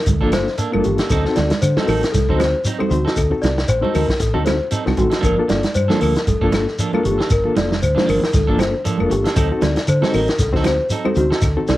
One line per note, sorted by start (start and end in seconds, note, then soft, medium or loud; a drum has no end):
0.06 0.20 D2 medium
0.06 0.27 A4 medium
0.06 muted clean electric guitar stroke soft
0.06 kick medium
0.06 closed hi-hat medium
0.06 high conga medium
0.06 shekere medium
0.21 0.46 G1 medium
0.21 0.30 F3 medium
0.21 0.31 A#3 medium
0.21 0.46 A#3 medium
0.21 0.31 D4 medium
0.21 0.46 D4 medium
0.21 0.46 F4 medium
0.21 0.32 A4 medium
0.21 0.47 A4 loud
0.21 kick medium
0.31 0.53 C5 medium
0.31 muted clean electric guitar stroke soft
0.31 snare medium
0.31 closed hi-hat soft
0.31 high conga medium
0.31 claves medium
0.31 shekere soft
0.47 snare soft
0.57 0.72 A#3 medium
0.57 0.71 D4 medium
0.57 0.71 A4 medium
0.57 closed hi-hat medium
0.57 shekere medium
0.72 0.85 F1 medium
0.72 0.97 A#3 medium
0.72 0.97 D4 medium
0.72 0.97 F4 medium
0.72 0.98 A4 loud
0.72 0.82 A#4 medium
0.72 muted clean electric guitar stroke soft
0.72 high conga medium
0.72 claves medium
0.84 0.99 G1 medium
0.84 1.04 G4 medium
0.84 muted clean electric guitar stroke soft
0.84 closed hi-hat soft
0.84 low conga medium
0.84 shekere soft
0.98 1.11 A#3 soft
0.98 1.11 D4 soft
0.98 1.11 A4 medium
0.98 snare medium
0.98 closed hi-hat soft
1.09 1.24 D2 medium
1.09 1.25 F#3 medium
1.09 1.25 C4 medium
1.09 1.25 D#4 medium
1.09 1.30 A4 medium
1.09 1.24 A4 medium
1.09 kick medium
1.09 snare soft
1.09 closed hi-hat medium
1.09 claves medium
1.09 shekere medium
1.25 1.49 C4 medium
1.25 1.49 D#4 medium
1.25 1.50 F#4 medium
1.25 1.50 A4 loud
1.25 muted clean electric guitar stroke soft
1.25 snare soft
1.36 1.51 D2 medium
1.36 1.56 D5 medium
1.36 muted clean electric guitar stroke soft
1.36 snare medium
1.36 closed hi-hat soft
1.36 high conga medium
1.36 shekere soft
1.50 muted clean electric guitar stroke soft
1.50 snare medium
1.50 closed hi-hat soft
1.50 high conga medium
1.62 1.76 D3 medium
1.62 1.82 C5 medium
1.62 closed hi-hat medium
1.62 claves medium
1.62 shekere medium
1.77 1.87 F#3 medium
1.77 2.02 C4 medium
1.77 1.88 C4 medium
1.77 2.02 D#4 medium
1.77 1.87 D#4 medium
1.77 2.02 F#4 medium
1.77 1.88 A4 medium
1.77 2.02 A4 medium
1.77 muted fingered electric bass stroke soft
1.77 snare medium
1.77 high conga medium
1.87 2.02 A1 medium
1.87 2.03 F#3 medium
1.87 2.03 C4 medium
1.87 2.03 D#4 medium
1.87 2.02 A4 medium
1.87 2.07 A#4 medium
1.87 open hi-hat medium
1.87 low conga medium
1.87 claves medium
1.87 shekere soft
2.03 muted clean electric guitar stroke soft
2.03 snare medium
2.03 closed hi-hat soft
2.12 2.28 C2 medium
2.12 2.33 A4 medium
2.12 muted clean electric guitar stroke soft
2.12 kick medium
2.12 snare soft
2.12 closed hi-hat medium
2.12 high conga medium
2.12 shekere medium
2.29 2.53 D2 medium
2.29 2.40 F#3 medium
2.29 2.53 C4 medium
2.29 2.40 C4 medium
2.29 2.53 D#4 medium
2.29 2.41 D#4 medium
2.29 2.54 F#4 medium
2.29 2.41 A4 medium
2.29 2.54 C5 loud
2.29 kick medium
2.39 2.59 C5 medium
2.39 muted clean electric guitar stroke soft
2.39 snare medium
2.39 closed hi-hat soft
2.39 high conga medium
2.39 claves medium
2.39 shekere soft
2.65 2.80 F#3 medium
2.65 2.81 C4 medium
2.65 2.80 D#4 medium
2.65 muted clean electric guitar stroke medium
2.65 closed hi-hat medium
2.65 shekere medium
2.79 3.04 C4 medium
2.79 3.04 D#4 medium
2.79 3.05 F#4 medium
2.79 2.88 A4 medium
2.79 3.05 C5 loud
2.79 muted clean electric guitar stroke soft
2.79 high conga medium
2.79 claves medium
2.90 3.04 D2 medium
2.90 3.11 F#4 medium
2.90 muted clean electric guitar stroke soft
2.90 closed hi-hat soft
2.90 low conga medium
2.90 shekere soft
3.05 3.21 C4 soft
3.05 3.20 D#4 medium
3.05 3.20 A4 medium
3.05 snare medium
3.16 3.31 D2 medium
3.16 3.37 A4 medium
3.16 kick medium
3.16 closed hi-hat medium
3.16 claves medium
3.16 shekere medium
3.30 3.55 C4 medium
3.30 3.56 D#4 medium
3.30 3.56 F#4 medium
3.30 3.56 A4 medium
3.30 muted clean electric guitar stroke soft
3.42 3.67 C2 medium
3.42 3.62 D5 medium
3.42 muted clean electric guitar stroke soft
3.42 snare medium
3.42 closed hi-hat soft
3.42 high conga medium
3.42 shekere soft
3.58 muted clean electric guitar stroke soft
3.58 snare medium
3.68 3.82 A1 medium
3.68 3.88 C5 medium
3.68 closed hi-hat medium
3.68 claves medium
3.68 shekere medium
3.81 3.93 F#3 medium
3.81 4.07 C4 medium
3.81 3.94 C4 medium
3.81 4.07 D#4 medium
3.81 3.94 D#4 medium
3.81 4.07 F#4 medium
3.81 3.94 A4 medium
3.81 4.07 C5 medium
3.81 muted fingered electric bass stroke soft
3.81 high conga medium
3.94 4.08 D2 medium
3.94 4.09 F#3 medium
3.94 4.07 C4 medium
3.94 4.07 D#4 medium
3.94 4.06 A4 medium
3.94 4.14 A#4 medium
3.94 open hi-hat medium
3.94 low conga medium
3.94 claves medium
3.94 shekere soft
4.08 muted clean electric guitar stroke soft
4.08 muted fingered electric bass stroke soft
4.08 kick medium
4.08 snare medium
4.20 4.34 A1 medium
4.20 4.40 A4 medium
4.20 muted clean electric guitar stroke soft
4.20 kick medium
4.20 snare soft
4.20 closed hi-hat medium
4.20 shekere medium
4.34 4.59 D2 medium
4.34 4.43 F#3 medium
4.34 4.59 C4 medium
4.34 4.43 C4 medium
4.34 4.44 D#4 medium
4.34 4.59 D#4 medium
4.34 4.59 F#4 medium
4.34 4.59 A4 medium
4.34 4.44 A4 medium
4.44 4.66 C5 medium
4.44 muted clean electric guitar stroke soft
4.44 snare medium
4.44 closed hi-hat soft
4.44 high conga medium
4.44 claves medium
4.44 shekere soft
4.71 4.86 F#3 medium
4.71 4.85 C4 medium
4.71 4.85 D#4 medium
4.71 4.84 A4 medium
4.71 closed hi-hat medium
4.71 shekere medium
4.85 4.97 C2 medium
4.85 5.11 C4 medium
4.85 5.11 D#4 medium
4.85 5.11 F#4 medium
4.85 4.95 A4 medium
4.85 5.12 A4 medium
4.85 muted clean electric guitar stroke soft
4.85 snare soft
4.85 high conga medium
4.85 claves medium
4.97 5.11 A1 medium
4.97 5.18 F#4 medium
4.97 muted clean electric guitar stroke soft
4.97 kick medium
4.97 closed hi-hat soft
4.97 high conga medium
4.97 low conga medium
4.97 shekere soft
5.10 5.21 C4 soft
5.10 5.21 D#4 medium
5.10 5.20 A4 medium
5.10 snare medium
5.10 closed hi-hat soft
5.21 5.37 G1 medium
5.21 5.37 F3 medium
5.21 5.36 A#3 medium
5.21 5.35 D4 medium
5.21 5.35 A4 medium
5.21 5.44 A#4 medium
5.21 kick medium
5.21 closed hi-hat medium
5.21 shekere medium
5.26 claves medium
5.36 5.63 A#3 medium
5.36 5.63 D4 medium
5.36 5.63 F4 medium
5.36 5.63 A4 medium
5.36 muted clean electric guitar stroke soft
5.48 5.64 G1 medium
5.48 5.69 D5 medium
5.48 muted clean electric guitar stroke soft
5.48 snare medium
5.48 closed hi-hat soft
5.48 high conga medium
5.48 shekere soft
5.61 muted clean electric guitar stroke soft
5.61 snare medium
5.61 closed hi-hat soft
5.61 high conga medium
5.74 5.89 G2 medium
5.74 5.95 C5 medium
5.74 closed hi-hat medium
5.74 claves medium
5.74 shekere medium
5.88 5.99 F3 medium
5.88 6.00 A#3 medium
5.88 6.14 A#3 medium
5.88 6.01 D4 medium
5.88 6.15 D4 medium
5.88 6.14 F4 medium
5.88 6.01 A4 medium
5.88 6.14 A4 medium
5.88 muted fingered electric bass stroke soft
5.88 snare medium
5.88 high conga medium
6.01 6.15 D2 medium
6.01 6.15 F3 medium
6.01 6.16 A#3 medium
6.01 6.15 A4 medium
6.01 6.21 A#4 medium
6.01 open hi-hat medium
6.01 low conga medium
6.01 claves medium
6.01 shekere soft
6.15 muted clean electric guitar stroke soft
6.15 snare medium
6.15 closed hi-hat soft
6.27 6.41 F1 medium
6.27 6.48 A4 medium
6.27 muted clean electric guitar stroke soft
6.27 kick medium
6.27 closed hi-hat medium
6.27 high conga medium
6.27 shekere medium
6.41 6.65 G1 medium
6.41 6.52 F3 medium
6.41 6.52 A#3 medium
6.41 6.67 A#3 medium
6.41 6.52 D4 medium
6.41 6.67 D4 medium
6.41 6.67 F4 medium
6.41 6.52 A4 medium
6.41 6.67 A4 loud
6.41 kick medium
6.52 6.73 A4 medium
6.52 muted clean electric guitar stroke soft
6.52 snare medium
6.52 closed hi-hat soft
6.52 high conga medium
6.52 claves medium
6.52 shekere soft
6.68 snare soft
6.79 6.94 F3 medium
6.79 6.92 A#3 medium
6.79 6.92 D4 medium
6.79 6.91 A4 medium
6.79 closed hi-hat medium
6.79 shekere medium
6.93 7.18 A#3 medium
6.93 7.18 D4 medium
6.93 7.18 F4 medium
6.93 7.18 A4 loud
6.93 7.03 A#4 medium
6.93 high conga medium
6.93 claves medium
7.03 7.18 G1 medium
7.03 7.25 G4 medium
7.03 muted clean electric guitar stroke soft
7.03 closed hi-hat soft
7.03 low conga medium
7.03 shekere soft
7.18 7.33 A#3 soft
7.18 7.33 D4 soft
7.18 7.33 A4 soft
7.18 snare medium
7.30 7.44 G1 medium
7.30 7.51 A#4 medium
7.30 kick medium
7.30 snare soft
7.30 closed hi-hat medium
7.30 claves medium
7.30 shekere medium
7.44 7.69 A#3 medium
7.44 7.69 D4 medium
7.44 7.69 F4 medium
7.44 7.70 A4 medium
7.44 muted clean electric guitar stroke soft
7.44 low conga medium
7.56 7.81 F1 medium
7.56 7.77 D5 medium
7.56 muted clean electric guitar stroke soft
7.56 snare medium
7.56 closed hi-hat soft
7.56 high conga medium
7.56 shekere soft
7.69 muted clean electric guitar stroke soft
7.69 snare medium
7.69 high conga medium
7.82 7.96 D2 medium
7.82 8.02 C5 medium
7.82 closed hi-hat medium
7.82 claves medium
7.82 shekere medium
7.95 8.04 F3 medium
7.95 8.05 A#3 medium
7.95 8.21 A#3 medium
7.95 8.05 D4 medium
7.95 8.21 D4 medium
7.95 8.21 F4 medium
7.95 8.21 C5 medium
7.95 muted clean electric guitar stroke medium
7.95 snare medium
7.95 high conga medium
8.06 8.22 G1 medium
8.06 8.21 F3 medium
8.06 8.20 A#3 medium
8.06 8.20 D4 medium
8.06 8.29 A#4 medium
8.06 open hi-hat medium
8.06 low conga medium
8.06 shekere soft
8.10 claves medium
8.20 muted clean electric guitar stroke soft
8.20 snare medium
8.33 8.47 D2 medium
8.33 8.54 A4 medium
8.33 muted clean electric guitar stroke soft
8.33 kick medium
8.33 snare soft
8.33 closed hi-hat medium
8.33 high conga medium
8.33 shekere medium
8.47 8.72 G1 medium
8.47 8.59 F3 medium
8.47 8.58 A#3 medium
8.47 8.73 A#3 medium
8.47 8.58 D4 medium
8.47 8.73 D4 medium
8.47 8.73 F4 medium
8.47 8.59 A4 medium
8.47 8.74 A4 loud
8.47 kick medium
8.59 8.80 C5 medium
8.59 muted clean electric guitar stroke soft
8.59 snare medium
8.59 closed hi-hat medium
8.59 high conga medium
8.59 claves medium
8.59 shekere soft
8.84 8.99 F3 medium
8.84 8.98 A#3 medium
8.84 8.98 D4 medium
8.84 9.00 A4 medium
8.84 closed hi-hat medium
8.84 shekere medium
8.98 9.11 F1 medium
8.98 9.24 A#3 medium
8.98 9.25 D4 medium
8.98 9.25 F4 medium
8.98 9.25 A4 loud
8.98 9.09 A#4 medium
8.98 muted clean electric guitar stroke soft
8.98 high conga medium
8.98 claves medium
9.10 9.25 G1 medium
9.10 9.31 G4 medium
9.10 muted clean electric guitar stroke soft
9.10 closed hi-hat medium
9.10 low conga medium
9.10 shekere soft
9.24 9.35 A#3 soft
9.24 9.36 D4 medium
9.24 9.35 A4 medium
9.24 snare medium
9.24 closed hi-hat medium
9.36 9.50 D2 medium
9.36 9.51 F#3 medium
9.36 9.50 C4 medium
9.36 9.49 D#4 medium
9.36 9.49 A4 medium
9.36 9.57 A4 medium
9.36 kick medium
9.36 closed hi-hat medium
9.36 claves medium
9.36 shekere medium
9.50 9.76 C4 medium
9.50 9.76 D#4 medium
9.50 9.76 F#4 medium
9.50 9.76 A4 medium
9.50 muted clean electric guitar stroke soft
9.62 9.76 D2 medium
9.62 9.83 D5 medium
9.62 muted clean electric guitar stroke soft
9.62 snare medium
9.62 closed hi-hat soft
9.62 high conga medium
9.62 shekere soft
9.76 muted clean electric guitar stroke soft
9.76 snare medium
9.76 closed hi-hat medium
9.87 10.02 D3 medium
9.87 10.08 C5 medium
9.87 closed hi-hat medium
9.87 claves medium
9.87 shekere medium
10.02 10.14 F#3 medium
10.02 10.26 C4 medium
10.02 10.14 C4 medium
10.02 10.27 D#4 medium
10.02 10.14 D#4 medium
10.02 10.27 F#4 medium
10.02 10.14 A4 medium
10.02 10.27 A4 medium
10.02 muted fingered electric bass stroke soft
10.02 snare medium
10.02 high conga medium
10.12 10.28 A1 medium
10.12 10.29 F#3 medium
10.12 10.29 C4 medium
10.12 10.29 D#4 medium
10.12 10.34 A#4 medium
10.12 muted clean electric guitar stroke medium
10.12 open hi-hat medium
10.12 low conga medium
10.12 claves medium
10.12 shekere soft
10.28 muted clean electric guitar stroke soft
10.28 snare medium
10.28 closed hi-hat soft
10.39 10.53 C2 medium
10.39 10.60 A4 medium
10.39 muted clean electric guitar stroke soft
10.39 kick medium
10.39 snare soft
10.39 closed hi-hat medium
10.39 shekere medium
10.52 10.78 D2 medium
10.52 10.78 C4 medium
10.52 10.78 D#4 medium
10.52 10.66 D#4 medium
10.52 10.78 F#4 medium
10.52 10.65 A4 medium
10.52 10.78 C5 medium
10.52 kick medium
10.52 snare soft
10.57 10.65 F#3 medium
10.57 10.66 C4 medium
10.64 10.86 C5 medium
10.64 muted clean electric guitar stroke soft
10.64 snare medium
10.64 closed hi-hat soft
10.64 high conga medium
10.64 claves medium
10.64 shekere soft
10.90 11.05 F#3 medium
10.90 11.06 C4 medium
10.90 11.06 D#4 medium
10.90 11.06 A4 medium
10.90 closed hi-hat medium
10.90 shekere medium
11.04 11.29 C4 medium
11.04 11.30 D#4 medium
11.04 11.30 F#4 medium
11.04 11.15 A4 medium
11.04 11.30 C5 loud
11.04 muted clean electric guitar stroke soft
11.04 high conga medium
11.04 claves medium
11.15 11.30 D2 medium
11.15 11.37 F#4 medium
11.15 muted clean electric guitar stroke soft
11.15 closed hi-hat soft
11.15 low conga medium
11.15 shekere soft
11.30 11.46 C4 soft
11.30 11.46 D#4 soft
11.30 11.45 A4 medium
11.30 snare medium
11.41 11.56 D2 medium
11.41 11.63 A4 medium
11.41 kick medium
11.41 snare soft
11.41 closed hi-hat medium
11.41 claves medium
11.41 shekere medium
11.57 11.77 C4 medium
11.57 11.77 D#4 medium
11.57 11.77 F#4 medium
11.57 11.77 A4 medium
11.57 muted clean electric guitar stroke soft
11.57 low conga medium
11.67 11.77 C2 medium
11.67 11.77 D5 medium
11.67 muted clean electric guitar stroke soft
11.67 snare medium
11.67 closed hi-hat soft
11.67 high conga medium
11.67 shekere soft